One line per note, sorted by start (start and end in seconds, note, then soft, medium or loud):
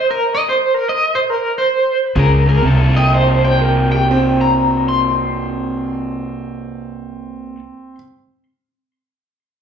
0.11 0.33 A#4 medium
0.35 0.47 D#5 medium
0.49 0.74 C5 medium
0.74 0.87 A#4 medium
0.89 1.13 D#5 loud
1.15 1.30 C5 medium
1.30 1.55 A#4 medium
1.58 2.00 C5 loud
2.16 2.61 C#2 loud
2.16 2.43 C#3 medium
2.16 2.43 G#3 loud
2.16 2.46 A#4 medium
2.46 2.61 C#3 medium
2.46 2.61 G#3 medium
2.46 2.64 A#4 loud
2.61 7.52 C2 loud
2.61 7.55 C3 medium
2.61 7.56 A#3 loud
2.61 7.58 E4 loud
2.65 7.59 A4 loud
2.96 3.12 D#5 medium
2.96 3.12 G5 medium
3.14 3.42 C5 medium
3.14 3.43 D#5 medium
3.45 3.61 C5 medium
3.45 3.90 G5 medium
3.62 3.90 A#4 medium
3.92 4.09 G4 medium
3.92 4.38 G5 medium
4.11 7.95 C4 loud
4.41 4.86 A#5 medium
4.89 7.95 C6 loud